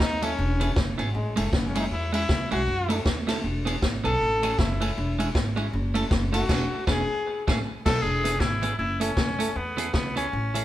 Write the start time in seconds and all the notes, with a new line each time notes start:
Already playing: D#4
0.00 D#2, muted clean electric guitar stroke, kick, snare
0.22 F#3 C#4 E4 A4, ride
0.39 E1
0.60 E3 B3 C#4 G#4, ride
0.76 F#1, kick, snare
0.98 G#1 E3 B3 C#4 G#4, ride
1.14 A1 G#3
1.36 F#1 G#3 A3 C#4 E4 G#4, ride
1.53 F#1 B3, muted clean electric guitar stroke, kick, snare
1.66 C#4
1.75 G#3 C#4 E4 G#4, ride
1.80 D#4
1.91 E2 E4
2.13 G#3 C#4 E4 G#4, ride
2.29 C#2, kick, snare
2.51 B1 G#3 C#4 E4 F#4 G#4, ride
2.68 F#2
2.89 A3 C#4 E4 A4, ride
3.05 D#2, muted clean electric guitar stroke, kick, snare
3.27 A3 C#4 E4 A4, snare, ride
3.44 E1
3.65 E3 B3 C#4 G#4, ride
3.82 G#1, kick, snare
4.04 B1 E3 B3 C#4 G#4 A4, ride
4.21 A1
4.43 E3 A3 C#4 G#4, ride
4.58 F#1 E4, muted clean electric guitar stroke, kick, snare
4.81 E3 A3 C#4 G#4, ride
4.98 E1
5.19 G#3 C#4 E4 G#4, ride
5.35 G#1, kick, snare
5.56 G#3 C#4 E4 G#4, ride
5.73 F#1
5.94 A3 C#4 E4 A4, ride
6.10 F#1, muted clean electric guitar stroke, kick, snare
6.33 A3 C#4 E4 F#4 A4, ride
6.49 E1 E3 B3 C#4 G#4, kick, snare, crash
6.87 E1 E3 B3 C#4 G#4, kick, snare
7.47 A1 E3 A3 C#4 G#4, kick, snare
7.86 B1 F#3 B3 D#4 A4, kick, snare, crash
8.02 E1 G#4
8.24 E3 B3 C#4 G#4, closed hi-hat
8.40 G#1 E4, muted clean electric guitar stroke, kick, snare
8.62 E3 B3 C#4 G#4, closed hi-hat
8.78 F#1 E4, muted clean electric guitar stroke
9.00 A3 C#4 E4 A4, closed hi-hat
9.17 F#1, kick, snare
9.39 A3 C#4 E4 A4, closed hi-hat
9.56 E2 B3
9.77 E3 B3 C#4 G#4, closed hi-hat
9.93 C#2 B3, muted clean electric guitar stroke, kick, snare
10.16 E3 B3 C#4 G#4, closed hi-hat
10.32 A1, muted clean electric guitar stroke
10.54 E3 A3 C#4 G#4, closed hi-hat